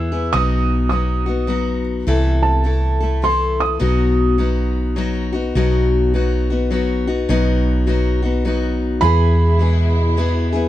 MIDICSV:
0, 0, Header, 1, 5, 480
1, 0, Start_track
1, 0, Tempo, 579151
1, 283, Time_signature, 3, 2, 24, 8
1, 8856, End_track
2, 0, Start_track
2, 0, Title_t, "Felt piano"
2, 0, Program_c, 0, 0
2, 0, Note_on_c, 0, 88, 88
2, 271, Note_on_c, 0, 87, 95
2, 295, Note_off_c, 0, 88, 0
2, 728, Note_off_c, 0, 87, 0
2, 741, Note_on_c, 0, 87, 76
2, 1497, Note_off_c, 0, 87, 0
2, 2010, Note_on_c, 0, 81, 84
2, 2683, Note_on_c, 0, 84, 87
2, 2700, Note_off_c, 0, 81, 0
2, 2987, Note_on_c, 0, 87, 80
2, 2991, Note_off_c, 0, 84, 0
2, 4096, Note_off_c, 0, 87, 0
2, 7466, Note_on_c, 0, 83, 106
2, 8856, Note_off_c, 0, 83, 0
2, 8856, End_track
3, 0, Start_track
3, 0, Title_t, "Steel-string acoustic guitar"
3, 0, Program_c, 1, 25
3, 0, Note_on_c, 1, 52, 49
3, 0, Note_on_c, 1, 59, 50
3, 0, Note_on_c, 1, 64, 55
3, 0, Note_on_c, 1, 68, 56
3, 88, Note_off_c, 1, 68, 0
3, 95, Note_off_c, 1, 52, 0
3, 95, Note_off_c, 1, 64, 0
3, 97, Note_off_c, 1, 59, 0
3, 97, Note_on_c, 1, 68, 44
3, 105, Note_on_c, 1, 64, 40
3, 117, Note_on_c, 1, 59, 36
3, 267, Note_off_c, 1, 59, 0
3, 268, Note_on_c, 1, 54, 74
3, 270, Note_on_c, 1, 47, 67
3, 273, Note_off_c, 1, 64, 0
3, 275, Note_off_c, 1, 68, 0
3, 277, Note_on_c, 1, 59, 66
3, 277, Note_on_c, 1, 63, 78
3, 279, Note_on_c, 1, 66, 76
3, 738, Note_off_c, 1, 54, 0
3, 745, Note_off_c, 1, 59, 0
3, 748, Note_on_c, 1, 54, 49
3, 751, Note_off_c, 1, 63, 0
3, 755, Note_on_c, 1, 59, 49
3, 757, Note_off_c, 1, 47, 0
3, 761, Note_on_c, 1, 63, 55
3, 762, Note_off_c, 1, 66, 0
3, 772, Note_on_c, 1, 66, 57
3, 1034, Note_off_c, 1, 66, 0
3, 1044, Note_on_c, 1, 66, 43
3, 1048, Note_off_c, 1, 63, 0
3, 1054, Note_off_c, 1, 54, 0
3, 1057, Note_off_c, 1, 59, 0
3, 1058, Note_on_c, 1, 63, 38
3, 1070, Note_on_c, 1, 59, 37
3, 1217, Note_off_c, 1, 59, 0
3, 1220, Note_on_c, 1, 54, 55
3, 1227, Note_off_c, 1, 63, 0
3, 1227, Note_on_c, 1, 59, 61
3, 1232, Note_off_c, 1, 66, 0
3, 1237, Note_on_c, 1, 63, 62
3, 1241, Note_on_c, 1, 66, 57
3, 1713, Note_off_c, 1, 54, 0
3, 1713, Note_on_c, 1, 48, 70
3, 1716, Note_off_c, 1, 59, 0
3, 1719, Note_off_c, 1, 63, 0
3, 1720, Note_on_c, 1, 52, 76
3, 1720, Note_on_c, 1, 57, 88
3, 1723, Note_on_c, 1, 64, 85
3, 1724, Note_off_c, 1, 66, 0
3, 1730, Note_on_c, 1, 69, 83
3, 2175, Note_off_c, 1, 52, 0
3, 2184, Note_off_c, 1, 57, 0
3, 2185, Note_on_c, 1, 52, 47
3, 2194, Note_on_c, 1, 57, 58
3, 2195, Note_off_c, 1, 64, 0
3, 2197, Note_off_c, 1, 69, 0
3, 2200, Note_off_c, 1, 48, 0
3, 2205, Note_on_c, 1, 64, 55
3, 2207, Note_on_c, 1, 69, 54
3, 2480, Note_off_c, 1, 69, 0
3, 2490, Note_on_c, 1, 69, 47
3, 2493, Note_off_c, 1, 52, 0
3, 2496, Note_off_c, 1, 64, 0
3, 2497, Note_off_c, 1, 57, 0
3, 2506, Note_on_c, 1, 64, 43
3, 2514, Note_on_c, 1, 57, 41
3, 2669, Note_off_c, 1, 57, 0
3, 2669, Note_on_c, 1, 52, 54
3, 2672, Note_off_c, 1, 64, 0
3, 2677, Note_off_c, 1, 69, 0
3, 2679, Note_on_c, 1, 57, 52
3, 2682, Note_on_c, 1, 64, 65
3, 2687, Note_on_c, 1, 69, 64
3, 3145, Note_off_c, 1, 52, 0
3, 3145, Note_off_c, 1, 57, 0
3, 3145, Note_on_c, 1, 47, 73
3, 3148, Note_on_c, 1, 59, 72
3, 3149, Note_on_c, 1, 54, 73
3, 3152, Note_off_c, 1, 64, 0
3, 3155, Note_on_c, 1, 63, 71
3, 3159, Note_off_c, 1, 69, 0
3, 3162, Note_on_c, 1, 66, 73
3, 3620, Note_off_c, 1, 54, 0
3, 3628, Note_off_c, 1, 59, 0
3, 3630, Note_on_c, 1, 54, 58
3, 3636, Note_off_c, 1, 47, 0
3, 3636, Note_off_c, 1, 63, 0
3, 3638, Note_on_c, 1, 59, 70
3, 3642, Note_off_c, 1, 66, 0
3, 3646, Note_on_c, 1, 63, 67
3, 3652, Note_on_c, 1, 66, 56
3, 4101, Note_off_c, 1, 54, 0
3, 4109, Note_off_c, 1, 59, 0
3, 4111, Note_on_c, 1, 54, 64
3, 4115, Note_off_c, 1, 63, 0
3, 4118, Note_off_c, 1, 66, 0
3, 4118, Note_on_c, 1, 59, 67
3, 4125, Note_on_c, 1, 63, 74
3, 4128, Note_on_c, 1, 66, 75
3, 4404, Note_off_c, 1, 66, 0
3, 4414, Note_on_c, 1, 66, 53
3, 4417, Note_off_c, 1, 54, 0
3, 4418, Note_off_c, 1, 63, 0
3, 4420, Note_off_c, 1, 59, 0
3, 4428, Note_on_c, 1, 63, 46
3, 4434, Note_on_c, 1, 59, 41
3, 4602, Note_off_c, 1, 66, 0
3, 4603, Note_on_c, 1, 47, 82
3, 4604, Note_off_c, 1, 59, 0
3, 4606, Note_off_c, 1, 63, 0
3, 4609, Note_on_c, 1, 54, 76
3, 4614, Note_on_c, 1, 59, 78
3, 4616, Note_on_c, 1, 63, 82
3, 4616, Note_on_c, 1, 66, 80
3, 5076, Note_off_c, 1, 54, 0
3, 5085, Note_off_c, 1, 47, 0
3, 5086, Note_on_c, 1, 54, 54
3, 5090, Note_off_c, 1, 59, 0
3, 5092, Note_off_c, 1, 63, 0
3, 5092, Note_off_c, 1, 66, 0
3, 5094, Note_on_c, 1, 59, 56
3, 5101, Note_on_c, 1, 63, 61
3, 5104, Note_on_c, 1, 66, 66
3, 5379, Note_off_c, 1, 66, 0
3, 5385, Note_off_c, 1, 54, 0
3, 5388, Note_off_c, 1, 59, 0
3, 5389, Note_off_c, 1, 63, 0
3, 5389, Note_on_c, 1, 66, 48
3, 5399, Note_on_c, 1, 63, 44
3, 5406, Note_on_c, 1, 59, 46
3, 5556, Note_off_c, 1, 59, 0
3, 5557, Note_on_c, 1, 54, 59
3, 5565, Note_off_c, 1, 63, 0
3, 5566, Note_on_c, 1, 59, 70
3, 5570, Note_off_c, 1, 66, 0
3, 5575, Note_on_c, 1, 63, 64
3, 5585, Note_on_c, 1, 66, 71
3, 5853, Note_off_c, 1, 66, 0
3, 5859, Note_off_c, 1, 63, 0
3, 5860, Note_off_c, 1, 54, 0
3, 5863, Note_on_c, 1, 66, 57
3, 5864, Note_off_c, 1, 59, 0
3, 5868, Note_on_c, 1, 63, 49
3, 5877, Note_on_c, 1, 59, 50
3, 6040, Note_off_c, 1, 63, 0
3, 6040, Note_on_c, 1, 47, 84
3, 6041, Note_off_c, 1, 59, 0
3, 6043, Note_off_c, 1, 66, 0
3, 6043, Note_on_c, 1, 54, 77
3, 6050, Note_on_c, 1, 59, 85
3, 6050, Note_on_c, 1, 63, 91
3, 6053, Note_on_c, 1, 66, 89
3, 6511, Note_off_c, 1, 54, 0
3, 6516, Note_off_c, 1, 59, 0
3, 6521, Note_on_c, 1, 54, 52
3, 6524, Note_off_c, 1, 47, 0
3, 6525, Note_off_c, 1, 63, 0
3, 6526, Note_on_c, 1, 59, 64
3, 6530, Note_off_c, 1, 66, 0
3, 6535, Note_on_c, 1, 63, 63
3, 6541, Note_on_c, 1, 66, 74
3, 6806, Note_off_c, 1, 66, 0
3, 6816, Note_off_c, 1, 63, 0
3, 6816, Note_on_c, 1, 66, 54
3, 6821, Note_off_c, 1, 54, 0
3, 6824, Note_off_c, 1, 59, 0
3, 6826, Note_on_c, 1, 63, 45
3, 6842, Note_on_c, 1, 59, 45
3, 6997, Note_off_c, 1, 59, 0
3, 7001, Note_on_c, 1, 54, 63
3, 7003, Note_off_c, 1, 66, 0
3, 7007, Note_on_c, 1, 59, 68
3, 7008, Note_off_c, 1, 63, 0
3, 7020, Note_on_c, 1, 63, 74
3, 7025, Note_on_c, 1, 66, 65
3, 7469, Note_off_c, 1, 54, 0
3, 7470, Note_off_c, 1, 59, 0
3, 7472, Note_on_c, 1, 52, 73
3, 7476, Note_off_c, 1, 63, 0
3, 7479, Note_on_c, 1, 64, 82
3, 7480, Note_on_c, 1, 59, 70
3, 7489, Note_off_c, 1, 66, 0
3, 7492, Note_on_c, 1, 68, 81
3, 7940, Note_off_c, 1, 52, 0
3, 7950, Note_on_c, 1, 52, 51
3, 7952, Note_off_c, 1, 64, 0
3, 7956, Note_off_c, 1, 59, 0
3, 7959, Note_on_c, 1, 59, 49
3, 7962, Note_off_c, 1, 68, 0
3, 7962, Note_on_c, 1, 64, 59
3, 7972, Note_on_c, 1, 68, 59
3, 8420, Note_off_c, 1, 52, 0
3, 8426, Note_off_c, 1, 59, 0
3, 8430, Note_on_c, 1, 52, 62
3, 8436, Note_off_c, 1, 64, 0
3, 8436, Note_on_c, 1, 59, 75
3, 8441, Note_off_c, 1, 68, 0
3, 8446, Note_on_c, 1, 64, 82
3, 8451, Note_on_c, 1, 68, 69
3, 8713, Note_off_c, 1, 68, 0
3, 8723, Note_on_c, 1, 68, 55
3, 8727, Note_off_c, 1, 64, 0
3, 8734, Note_off_c, 1, 52, 0
3, 8737, Note_off_c, 1, 59, 0
3, 8737, Note_on_c, 1, 64, 53
3, 8750, Note_on_c, 1, 59, 51
3, 8856, Note_off_c, 1, 59, 0
3, 8856, Note_off_c, 1, 64, 0
3, 8856, Note_off_c, 1, 68, 0
3, 8856, End_track
4, 0, Start_track
4, 0, Title_t, "String section"
4, 0, Program_c, 2, 48
4, 7479, Note_on_c, 2, 64, 79
4, 7482, Note_on_c, 2, 56, 68
4, 7485, Note_on_c, 2, 47, 75
4, 8856, Note_off_c, 2, 47, 0
4, 8856, Note_off_c, 2, 56, 0
4, 8856, Note_off_c, 2, 64, 0
4, 8856, End_track
5, 0, Start_track
5, 0, Title_t, "Fingered electric bass"
5, 0, Program_c, 3, 33
5, 0, Note_on_c, 3, 40, 65
5, 253, Note_off_c, 3, 40, 0
5, 279, Note_on_c, 3, 35, 70
5, 1694, Note_off_c, 3, 35, 0
5, 1716, Note_on_c, 3, 36, 68
5, 3133, Note_off_c, 3, 36, 0
5, 3159, Note_on_c, 3, 35, 70
5, 4575, Note_off_c, 3, 35, 0
5, 4602, Note_on_c, 3, 35, 71
5, 6017, Note_off_c, 3, 35, 0
5, 6043, Note_on_c, 3, 35, 74
5, 7456, Note_off_c, 3, 35, 0
5, 7478, Note_on_c, 3, 40, 70
5, 8856, Note_off_c, 3, 40, 0
5, 8856, End_track
0, 0, End_of_file